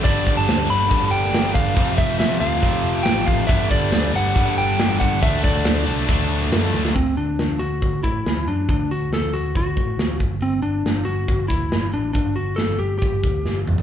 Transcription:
<<
  \new Staff \with { instrumentName = "Lead electric guitar" } { \time 4/4 \key g \major \tempo 4 = 139 d''8. a''8. b''4 g''4 f''8~ | f''8 e''8 e''8 f''4. g''8 f''8 | e''8 d''4 fis''4 g''4 fis''8 | e''8 d''4 r2 r8 |
c'8 d'4 fis'4 e'4 d'8 | d'8 fis'8 a'8 fis'8 fis'4. r8 | c'8 d'4 fis'4 e'4 d'8 | d'8 fis'8 a'8 g'8 g'4. r8 | }
  \new Staff \with { instrumentName = "Distorted electric guitar" } { \clef bass \time 4/4 \key g \major <g, d g b d'>2 <g, d g b d'>2 | <f, c f a c'>2 <f, c f a c'>2 | <g, d g b d'>2 <g, d g b d'>2 | <d fis a d'>2 <d fis a d'>2 |
r1 | r1 | r1 | r1 | }
  \new Staff \with { instrumentName = "Distorted electric guitar" } { \clef bass \time 4/4 \key g \major <g, d g>2 <g, d g>2 | <f, c f>2 <f, c f>2 | <g, d g>2 <g, d g>2 | <d a d'>2 <d a d'>2 |
r1 | r1 | r1 | r1 | }
  \new Staff \with { instrumentName = "Overdriven electric guitar" } { \clef bass \time 4/4 \key g \major <g, d g>4. <g, d g>2~ <g, d g>8 | <f, c f>4. <f, c f>2~ <f, c f>8 | <g, d g>4. <g, d g>2~ <g, d g>8 | <d a d'>4. <d a d'>2~ <d a d'>8 |
r1 | r1 | r1 | r1 | }
  \new Staff \with { instrumentName = "Picked electric bass" } { \clef bass \time 4/4 \key g \major g,,8 g,,8 d,8 g,,8 g,8 g,,8 g,,8 g,,8 | f,,8 f,,8 f,,8 d,8 f,,8 f,,8 a,,8 a,,8 | g,,8 g,,8 d,8 g,,8 g,8 g,,8 g,,8 g,,8 | d,8 d,8 d,8 c,8 d,8 d,8 fis,8 d,8 |
d,8 d,8 d,8 d,8 d,8 a,8 d,8 fis,8 | d,8 d,8 d,8 d,8 d,8 a,8 d,8 g,,8 | g,,8 g,,8 g,,8 g,,8 g,,8 d,8 g,,8 a,,8 | g,,8 g,,8 g,,8 g,,8 g,,8 d,8 g,,8 a,,8 | }
  \new DrumStaff \with { instrumentName = "Drums" } \drummode { \time 4/4 <cymc bd>8 <hho bd>8 <hho sn>8 hho8 <hho bd>8 hho16 sn16 <hho sn>8 <hho bd>8 | <hho bd>8 <hho bd>8 <hho sn>8 hho8 <hho bd>8 hho8 <hho sn>8 <hho bd>8 | <hho bd>8 <hho bd>8 <hho sn>8 hho8 <hho bd>8 hho8 <hho sn>8 <hho bd>8 | <hho bd>8 <hho bd>8 <hho sn>8 hho8 <hho bd>8 hho16 sn16 <hho sn>8 sn16 sn16 |
<hho bd>4 <hho sn>4 <hho bd>8 bd8 <hho sn>4 | <hho bd>4 <hho sn>4 <hho bd>8 bd8 <hho sn>8 bd8 | hho4 <hho sn>4 <hho bd>8 bd8 <hho sn>4 | <hho bd>4 <hho sn>4 <hho bd>8 bd8 sn8 toml16 tomfh16 | }
>>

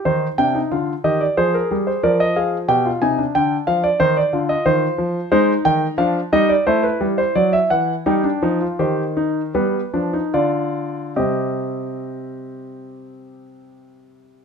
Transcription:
<<
  \new Staff \with { instrumentName = "Grand piano" } { \time 4/4 \key c \minor \tempo 4 = 88 << { c''8 g''8 f''8 ees''16 d''16 c''16 bes'8 c''16 d''16 ees''16 f''8 | g''8 aes''8 g''8 f''16 d''16 c''16 d''8 ees''16 c''4 | c''8 g''8 f''8 ees''16 d''16 c''16 b'8 c''16 d''16 e''16 fis''8 | g''4 c''4 b'4 d''4 |
<g c' ees''>1 | } \\ { ees'8 d'16 ees'16 f'8 g'8 aes'4 bes'8 aes'8 | g'16 f'16 ees'16 d'4~ d'16 ees'8 f'4. | ees'4 d'8 ees'8 e'2 | ees'16 d'16 ees'16 f'16 g'8 ees'8 b8 d'16 ees'16 f'4 |
g'1 | } >> }
  \new Staff \with { instrumentName = "Grand piano" } { \clef bass \time 4/4 \key c \minor ees8 c8 d8 ees8 f8 g8 f4 | b,8 c8 d8 f8 ees8 d8 ees8 f8 | aes8 ees8 f8 g8 a8 g8 fis8 e8 | g8 f8 ees4 g8 f8 d4 |
c1 | }
>>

